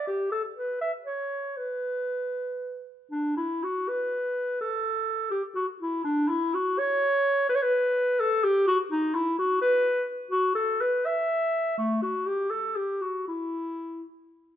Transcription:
0.07 G4
0.32 A4
0.56 B4
0.81 E5
1.05 C#5
1.57 B4
3.11 D4
3.37 E4
3.63 F#4
3.88 B4
4.61 A4
5.31 G4
5.55 F#4
5.80 E4
6.04 D4
6.28 E4
6.54 F#4
6.78 C#5
7.49 B4
7.55 C#5
7.62 B4
8.20 A4
8.43 G4
8.67 F#4
8.91 D#4
9.14 E4
9.38 F#4
9.61 B4
10.31 F#4
10.55 A4
10.81 B4
11.06 E5
11.78 A3
12.02 F#4
12.26 G4
12.50 A4
12.76 G4
13.01 F#4
13.28 E4

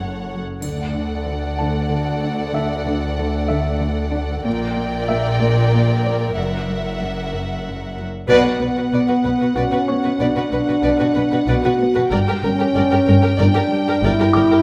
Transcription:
Already playing: F#1 F#2 A4 C#5 F#5
0.00 F#2
0.32 F#3
0.62 D2 D3 A4 D5 F#5, triangle
0.95 D3
1.26 D3
1.59 D3 A5
1.91 D3
2.22 D4
2.54 D3 E5
2.87 D3
3.19 D3
3.48 D3 E5
3.82 D3
4.14 D4
4.45 A#1 A#2 A#4 D5 G5
4.77 A#2
5.08 A#2 E5
5.41 A#2
5.73 A#2
6.05 A#3 D5
6.36 F#1 F#2 E5 F#5
6.69 F#2
7.01 F#2
7.33 F#2
7.66 F#2
7.97 F#3
8.28 B1 B2 B4 D5 F#5
8.44 B2 F#4 B4
8.60 B1 B2 B3 B4
8.76 B2 F#4 B4
8.92 B1 B2 B4 D5
9.07 B2 F#4 B4
9.24 B1 B2 B4
9.39 B2 F#4 B4
9.55 B1 B2 B3 C#4 F#4 B4 D5 F#5
9.71 B2 F#4 B4
9.88 B3 C#5 C#6
10.04 B2 F#4 B4
10.19 B1 B2 D4 B4 D5
10.36 B2 F#4 B4
10.52 B1 B2 B3 B4
10.67 B2 F#4 B4
10.82 B1 B2 B4 D5
10.99 B2 F#4 B4
11.14 B1 B2 B4
11.31 B2 F#4 B4
11.47 B1 B2 B3 F#4 B4 D5
11.63 B2 F#4 B4
11.80 B3
11.95 B2 F#4 B4
12.11 G1 G2 A#4 D5 G5
12.28 G2 G4 A#4
12.43 G1 G2 G3 C#4 A#4
12.60 G2 G4 A#4
12.75 G1 G2 A#4 D5
12.91 G2 G4 A#4
13.07 G1 G2 A#4
13.23 G2 G4 A#4
13.39 G1 G2 G3 D4 A#4 D5
13.55 G2 G4 A#4
13.71 G3
13.88 G2 G4 A#4
14.03 G1 G2 E4 A#4 D5
14.19 G2 G4 A#4
14.33 G1 G2 G3 A#4 D6
14.51 G2 G4 A#4

